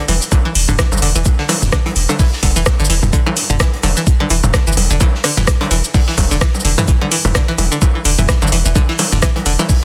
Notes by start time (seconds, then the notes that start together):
0.08 E1 E3, open hi-hat, low bongo, shaker
0.22 shaker
0.32 D3, kick, low bongo, shaker
0.45 E3
0.55 E1, open hi-hat, shaker
0.69 E1 D3, mid tom, low bongo, shaker
0.79 E3, kick, cross-stick, snare, shaker
0.92 G1, low bongo, shaker
0.97 shaker
1.02 E1 D3, open hi-hat, shaker
1.16 E1 E3, shaker
1.25 kick, low bongo, shaker
1.39 D3, snare
1.49 E3, open hi-hat, low bongo, shaker
1.62 E1, snare, mid tom, shaker
1.72 D3, kick, cross-stick, snare, shaker
1.86 E3, closed hi-hat, low bongo
1.96 E1, open hi-hat, shaker
2.09 D3, low bongo, shaker
2.19 E3, kick, open hi-hat, shaker
2.33 snare
2.43 E1 D3, kick, open hi-hat, low bongo, shaker
2.56 E1 E3, shaker
2.66 kick, cross-stick, snare, low bongo, shaker
2.80 G1 D3, shaker
2.85 shaker
2.90 E1 E3, open hi-hat, shaker
3.03 E1, mid tom, low bongo, shaker
3.13 D3, kick, shaker
3.26 E3, low bongo
3.36 open hi-hat, shaker
3.50 E1 D3, mid tom, shaker
3.60 E3, kick, cross-stick, snare, low bongo, shaker
3.73 closed hi-hat
3.83 E1 D3, open hi-hat, low bongo, shaker
3.97 E3, shaker
4.07 kick, shaker
4.20 D3, low bongo
4.30 E1 E3, open hi-hat, shaker
4.44 E1, mid tom, low bongo, shaker
4.53 D3, kick, cross-stick, snare, shaker
4.67 G1 E3, shaker
4.72 shaker
4.77 E1, open hi-hat, low bongo, shaker
4.90 E1 D3, shaker
5.00 E3, kick, low bongo, shaker
5.14 snare
5.24 D3, cross-stick, open hi-hat, shaker
5.37 E1 E3, snare, mid tom, low bongo, shaker
5.47 kick, cross-stick, snare, shaker
5.61 D3, closed hi-hat, low bongo
5.71 E1 E3, open hi-hat, shaker
5.84 shaker
5.94 D3, kick, open hi-hat, low bongo, shaker
6.08 E3, snare
6.17 E1, kick, open hi-hat, low bongo, shaker
6.31 E1 D3, shaker
6.41 E3, kick, cross-stick, snare, shaker
6.55 low bongo, shaker
6.60 shaker
6.65 E1 D3, open hi-hat, shaker
6.78 E3, mid tom, low bongo, shaker
6.88 E3, kick, shaker
7.01 D3, low bongo
7.12 E3, open hi-hat, shaker
7.25 E1 E3, mid tom, low bongo, shaker
7.34 D3, kick, cross-stick, snare, shaker
7.48 E3, closed hi-hat
7.58 E1 E3, open hi-hat, low bongo, shaker
7.72 D3, shaker
7.81 E3, kick, low bongo, shaker
7.95 E3
8.05 E1 D3, open hi-hat, shaker
8.19 E1 E3, mid tom, low bongo, shaker
8.29 E3, kick, cross-stick, snare, shaker
8.42 G1 D3, low bongo, shaker
8.47 shaker
8.52 E1 E3, open hi-hat, shaker
8.66 E1 E3, shaker
8.76 D3, kick, low bongo, shaker
8.89 E3, snare
8.98 E3, open hi-hat, low bongo, shaker
9.12 E1 D3, snare, mid tom, shaker
9.22 E3, kick, cross-stick, snare, shaker
9.36 E3, closed hi-hat, low bongo
9.46 E1 D3, open hi-hat, shaker
9.59 E3, low bongo, shaker
9.69 E3, kick, open hi-hat, shaker